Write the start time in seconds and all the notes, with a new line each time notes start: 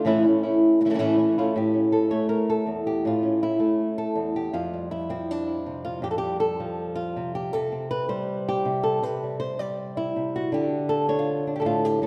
0.05 A2 E3 A3 C#4 E4
0.24 A3 C#4 E4
0.43 A3 C#4 E4
0.81 muted nylon-string guitar stroke
0.85 E3 A3 C#4 E4
0.90 E3 A3 C#4 E4
0.94 E3 A3 C#4 E4
0.99 A2 E3 A3 C#4 E4
1.17 E3 A3 C#4 E4
1.38 A3 C#4 E4 F4
1.56 A2 G4
1.74 C#4
1.92 A4
2.11 A3 C#5
2.29 A#4
2.50 A4
2.66 E2
2.87 G4
3.05 A2 F4
3.23 C#4
3.43 E4
3.59 A3
3.98 A4
4.15 E2
4.36 G4
4.53 F2 F4
4.73 G3
4.91 E4
5.09 F3 C4
5.31 D4
5.47 E4
5.66 C3
5.85 F4
6.02 F2 G4
6.11 A4
6.18 G4
6.23 G3
6.40 A4
6.60 F3
6.96 F4
7.16 C3
7.35 G4
7.53 C3 A4
7.72 C4
7.91 B4
8.09 G3 C5
8.49 G4
8.65 C3
8.83 A4
9.02 C3 B4
9.23 G3
9.40 C5
9.59 G3 D5
9.97 E4
10.16 C3
10.36 F#4
10.52 D3 D4 G4
10.89 A4
11.09 D4 C#5
11.19 F4
11.47 D4
11.56 G4
11.60 G4 A4
11.65 A2 F4
11.85 G4
12.02 A2 A4